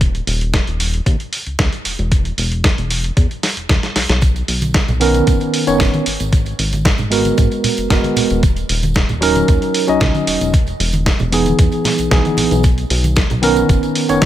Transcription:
Already playing: D#1
0.01 kick, closed hi-hat
0.15 closed hi-hat
0.27 D#1, open hi-hat
0.41 closed hi-hat
0.54 kick, snare, closed hi-hat
0.67 D#1, closed hi-hat
0.80 open hi-hat
0.94 closed hi-hat
1.06 D#2, kick, closed hi-hat
1.20 closed hi-hat
1.33 open hi-hat
1.47 C#2, closed hi-hat
1.59 C#2, kick, snare, closed hi-hat
1.73 closed hi-hat
1.85 E1, open hi-hat
1.99 E1, closed hi-hat
2.12 kick, closed hi-hat
2.25 closed hi-hat
2.38 E1, open hi-hat
2.52 closed hi-hat
2.64 kick, snare, closed hi-hat
2.78 E1, closed hi-hat
2.90 open hi-hat
3.04 closed hi-hat
3.17 E2, kick, closed hi-hat
3.31 closed hi-hat
3.43 snare, open hi-hat
3.57 E1, closed hi-hat
3.69 E1, kick, snare, closed hi-hat
3.83 snare, closed hi-hat
3.96 B1, snare, open hi-hat
4.09 B1, snare, closed hi-hat
4.21 kick, closed hi-hat, tambourine
4.36 closed hi-hat, tambourine
4.48 B1, open hi-hat
4.62 closed hi-hat, tambourine, high conga
4.74 kick, snare, closed hi-hat, tambourine
4.88 B1, closed hi-hat, tambourine, low conga
5.00 D#3 B3 C#4 A#4, open hi-hat
5.14 closed hi-hat, tambourine, high conga
5.27 F#1, kick, closed hi-hat, tambourine
5.40 closed hi-hat, tambourine
5.54 open hi-hat
5.67 F#1 D#3 B3 C#4 C#5, closed hi-hat, tambourine
5.78 F#1, kick, snare, closed hi-hat, tambourine, low conga
5.93 closed hi-hat, tambourine, high conga
6.06 G#1, open hi-hat
6.20 G#1, closed hi-hat, tambourine
6.33 kick, closed hi-hat, tambourine
6.46 closed hi-hat, tambourine
6.59 G#1, open hi-hat
6.72 closed hi-hat, tambourine, high conga
6.85 kick, snare, closed hi-hat, tambourine
6.98 G#1, closed hi-hat, tambourine, low conga
7.10 G#3 B3 F#4 A#4, open hi-hat
7.25 closed hi-hat, tambourine, high conga
7.37 G#2, kick, closed hi-hat, tambourine
7.51 closed hi-hat, tambourine
7.64 open hi-hat, low conga
7.77 F#1, closed hi-hat, tambourine
7.90 F#1 G#3 B3 F#4 A#4, kick, snare, closed hi-hat, tambourine
8.04 closed hi-hat, tambourine, high conga
8.16 D#1, open hi-hat, low conga
8.30 D#1, closed hi-hat, tambourine
8.43 kick, closed hi-hat, tambourine
8.56 closed hi-hat, tambourine
8.69 D#1, open hi-hat
8.83 closed hi-hat, tambourine, high conga
8.94 kick, snare, closed hi-hat, tambourine
9.09 D#1, closed hi-hat, tambourine, low conga
9.21 F#3 C#4 D#4 A#4, open hi-hat
9.35 closed hi-hat, tambourine, high conga
9.48 D#2, kick, closed hi-hat, tambourine
9.62 closed hi-hat, tambourine
9.74 open hi-hat
9.87 C#2 F#3 C#4 D#4 D#5, closed hi-hat, tambourine
10.00 C#2, kick, snare, closed hi-hat, tambourine, low conga
10.14 closed hi-hat, tambourine, high conga
10.27 E1, open hi-hat
10.41 E1, closed hi-hat, tambourine
10.54 kick, closed hi-hat, tambourine
10.67 closed hi-hat, tambourine
10.80 E1, open hi-hat
10.92 closed hi-hat, tambourine, high conga
11.06 kick, snare, closed hi-hat, tambourine
11.19 E1, closed hi-hat, tambourine, low conga
11.31 E3 B3 D#4 G#4, open hi-hat
11.46 closed hi-hat, tambourine, high conga
11.59 E2, kick, closed hi-hat, tambourine
11.72 closed hi-hat, tambourine
11.84 snare, open hi-hat, low conga
11.98 B1, closed hi-hat, tambourine
12.11 B1 E3 B3 D#4 G#4, kick, snare, closed hi-hat, tambourine
12.25 closed hi-hat, tambourine, high conga
12.37 B1, open hi-hat, low conga
12.51 B1, closed hi-hat, tambourine
12.63 kick, closed hi-hat, tambourine
12.78 closed hi-hat, tambourine
12.90 B1, open hi-hat
13.04 closed hi-hat, tambourine, high conga
13.16 kick, snare, closed hi-hat, tambourine
13.30 B1, closed hi-hat, tambourine, low conga
13.42 D#3 B3 C#4 A#4, open hi-hat
13.56 closed hi-hat, tambourine, high conga
13.69 F#1, kick, closed hi-hat, tambourine
13.83 closed hi-hat, tambourine
13.95 open hi-hat
14.09 F#1 D#3 B3 C#4 C#5, closed hi-hat, tambourine
14.21 F#1, kick, snare, closed hi-hat, tambourine, low conga

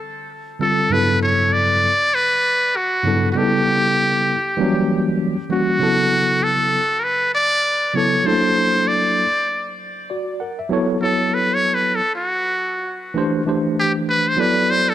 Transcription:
0.59 D3 G3 C4 F4 A4
0.90 G2 C#3 F#3 B3 E4 A4 B4
1.23 C#5
1.53 D5
2.15 B4
2.76 F#4
3.03 G2 C#3 F#3 B3 E4 A4
3.32 C#3 G3 F#4
3.36 B3 D#4 G4 A4
3.44 E4
4.57 E3 F#3 G3 A#3 C#4
5.49 E3 G3 A#3 C#4 F#4
5.79 C#3 F#3 B3 E4 A4
6.43 A4
7.00 A#4
7.04 B4
7.35 D5
7.94 C#3 F#3 B3 E4 A4 C#5
8.24 F#3 A3 D4 E4 A4 C5
8.32 A#3
8.88 D5
10.10 F#4 D5
10.40 A#4 F#5
10.59 E5
10.69 F#3 B3 E4 A4 C#5
11.00 F#3 B3 E4 A4 C#5
11.34 B4
11.54 C#5
11.74 B4
11.95 A4
12.15 F#4
13.14 E3 A3 D4 G4 C5
13.45 E3 A3 D4 G4 C5
13.80 G4
14.09 B4
14.28 C5
14.36 F#3 B3 E4 A4 B4 D5
14.71 C5
14.89 A4

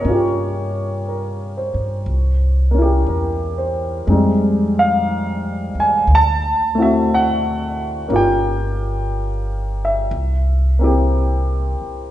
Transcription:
Already playing: C#5
0.01 G2 A#3 C#4
0.08 F4 G4
1.08 A#4
1.57 C5
1.74 G2
2.06 C2
2.71 A#3 C#4
2.78 E4 G4
3.07 E2 A#4
3.58 C5
4.07 F2 G#3 C4 D#4
4.12 G3
4.79 F5
5.75 D#2
5.80 G#5
6.07 D2
6.15 A5
6.75 A3 C4 E4
6.80 F#4 E5
7.14 F#5
8.08 G1 A#3 C#4 F4
8.13 G4 G5
9.85 E5
10.11 C2
10.79 A#3 C4 E4
10.84 G4
11.82 muted upright bass stroke

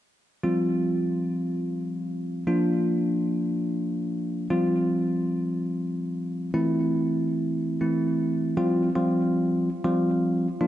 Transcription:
0.43 F3 G3 C4 F4
2.47 F3 A#3 D4 F4
4.50 F3 G3 C4 F4
6.54 E3 A3 C4 E4
7.81 E3 A3 C4 E4
8.57 F3 G3 C4 F4
8.95 F3 G3 C4 F4
9.84 F3 G3 C4 F4
10.61 F3 A#3 D4 F4

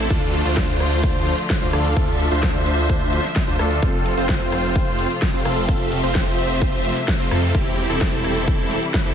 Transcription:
Already playing: A3
0.10 D2 D3 F3 D4 F4 A4, kick, closed hi-hat
0.34 open hi-hat
0.45 D2 D4 F4 C5, closed hi-hat
0.57 kick, snare, closed hi-hat
0.80 cross-stick, open hi-hat
0.92 closed hi-hat
1.04 kick, closed hi-hat
1.27 open hi-hat
1.38 closed hi-hat
1.50 kick, snare, closed hi-hat
1.62 D2 D4 F4 C5
1.73 D2 D4 F4 A4, cross-stick, open hi-hat
1.85 closed hi-hat
1.97 D2 D4 F4 A4 E5, kick, closed hi-hat
2.08 open hi-hat
2.20 open hi-hat
2.31 D2 D4 F4 C5, closed hi-hat
2.43 kick, snare, closed hi-hat
2.66 open hi-hat
2.78 closed hi-hat
2.89 kick, closed hi-hat
3.01 closed hi-hat
3.13 open hi-hat
3.24 snare, closed hi-hat
3.36 kick, snare, closed hi-hat
3.48 D2 D4 F4 C5, closed hi-hat
3.59 D2 D4 F4 A4, cross-stick, open hi-hat
3.71 closed hi-hat
3.83 F1 C3 F3 A3 C4 F4 A4, kick, closed hi-hat
4.06 open hi-hat
4.17 F1 C4 F4 C5, closed hi-hat
4.29 kick, snare, closed hi-hat
4.52 cross-stick, open hi-hat
4.64 closed hi-hat
4.76 kick, closed hi-hat
4.99 open hi-hat
5.10 closed hi-hat
5.22 kick, snare, closed hi-hat
5.34 F1 C4 F4 C5
5.45 F1 C4 F4 A4, cross-stick, open hi-hat
5.57 closed hi-hat
5.68 F1 C4 F4 A4 E5, kick, closed hi-hat
5.92 open hi-hat
6.03 F1 C4 F4 C5, closed hi-hat
6.15 kick, snare, closed hi-hat
6.38 open hi-hat
6.50 closed hi-hat
6.62 kick, closed hi-hat
6.85 open hi-hat
6.96 snare, closed hi-hat
7.08 kick, snare, closed hi-hat
7.20 F1 C4 F4 C5
7.31 F2 C4 F4 A4, cross-stick, open hi-hat
7.43 closed hi-hat
7.55 E1 E3 G3 C4 E4 G4, kick, closed hi-hat
7.78 open hi-hat
7.90 E1 C4 E4 A4, closed hi-hat
8.01 kick, snare, closed hi-hat
8.24 cross-stick, open hi-hat
8.36 closed hi-hat
8.48 kick, closed hi-hat
8.71 open hi-hat
8.83 closed hi-hat
8.94 kick, snare, closed hi-hat
9.06 E1 C4 E4 A4

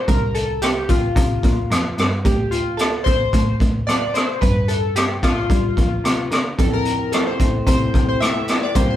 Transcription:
0.08 C2 A#4, kick, closed hi-hat
0.35 A4, closed hi-hat
0.62 G4, cross-stick, closed hi-hat
0.89 F4, kick, closed hi-hat
1.16 C3, kick, closed hi-hat
1.43 A#2, kick, closed hi-hat
1.70 F2, cross-stick, closed hi-hat
1.98 G2, cross-stick, closed hi-hat
2.25 D2 G4, kick, closed hi-hat
2.51 F4, closed hi-hat
2.77 A4, cross-stick, closed hi-hat
3.04 C5, kick, closed hi-hat
3.33 A2, kick, closed hi-hat
3.60 A2, kick, closed hi-hat
3.87 D5, cross-stick, closed hi-hat
4.14 C5, cross-stick, closed hi-hat
4.41 G2 B4, kick, closed hi-hat
4.68 A4, closed hi-hat
4.96 G4, cross-stick, closed hi-hat
5.23 F4, kick, cross-stick, closed hi-hat
5.50 G3, kick, closed hi-hat
5.77 F3, kick, closed hi-hat
6.04 C3, cross-stick, closed hi-hat
6.31 D3, cross-stick, closed hi-hat
6.58 F2 C3 E3 C4 A4, kick, closed hi-hat
6.73 A#4
6.85 closed hi-hat
7.12 A4, cross-stick, closed hi-hat
7.27 C5
7.39 E3 A3 C4, kick, closed hi-hat
7.66 C3 E3 A3 C4 C5, kick, closed hi-hat
7.94 C3, kick, closed hi-hat
8.09 C5
8.20 C3 E3 A3 C4 E5, cross-stick, closed hi-hat
8.48 cross-stick, closed hi-hat
8.63 D5
8.74 C2 C3 F3 A#3 F4 G4 C5, kick, closed hi-hat
8.90 C5

